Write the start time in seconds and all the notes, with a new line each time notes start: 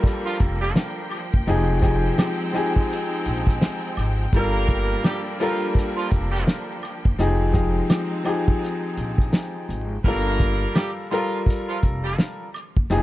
Already playing: F3 G3 A#3 D4 F4 A4 A#4 G5
0.04 kick, closed hi-hat, maracas
0.26 F3 F4
0.40 F1, kick, closed hi-hat, maracas
0.61 G3 G4, closed hi-hat
0.76 snare, closed hi-hat, maracas
1.11 open hi-hat, high woodblock, maracas
1.34 F#1, kick
1.47 F1 F3 G#3 C4 D#4 G4 G#4, closed hi-hat, maracas
1.81 F3 D#4 G4 G#4, kick, closed hi-hat, maracas
2.18 snare, closed hi-hat, high woodblock, maracas
2.53 F3 D#4 G4 G#4, closed hi-hat, maracas
2.76 kick
2.90 closed hi-hat, maracas
3.26 A#1, closed hi-hat, maracas
3.47 kick, closed hi-hat
3.61 snare, closed hi-hat, maracas
3.97 G#1, closed hi-hat, high woodblock, maracas
4.33 G1 F3 G3 A#3 D4 F4 A4 A#4, kick, closed hi-hat, maracas
4.68 kick, closed hi-hat, maracas
5.04 G3 G4, snare, closed hi-hat, high woodblock, maracas
5.39 F3 G3 F4 A4 A#4, closed hi-hat, maracas
5.75 kick, closed hi-hat, maracas
5.97 F3 F4
6.11 F1, kick, closed hi-hat, maracas
6.32 G3 G4
6.36 closed hi-hat
6.47 snare, closed hi-hat, maracas
6.83 closed hi-hat, high woodblock, maracas
7.05 F#1, kick
7.19 F1 F3 G#3 C4 D#4 G4 G#4, closed hi-hat, maracas
7.52 F3 D#4 G4 G#4, kick, closed hi-hat, maracas
7.90 snare, closed hi-hat, high woodblock, maracas
8.24 F3 D#4 G4 G#4, closed hi-hat, high woodblock, maracas
8.48 kick
8.62 closed hi-hat, maracas
8.97 A#1, closed hi-hat, maracas
9.18 kick, closed hi-hat
9.33 snare, closed hi-hat, maracas
9.68 G#1, closed hi-hat, maracas
10.04 G1 G3 A#3 F4 A4 A#4, kick, crash, maracas
10.40 kick, closed hi-hat, maracas
10.75 G3 G4, snare, closed hi-hat, high woodblock, maracas
11.11 F3 G3 F4 A4 A#4, closed hi-hat, maracas
11.47 kick, closed hi-hat, maracas
11.68 F3 F4
11.83 F1, kick, closed hi-hat, maracas
12.04 G3 G4
12.18 snare, closed hi-hat, maracas
12.54 closed hi-hat, high woodblock, maracas
12.77 F#1, kick
12.90 F1 F3 D#4 G4 G#4, closed hi-hat, maracas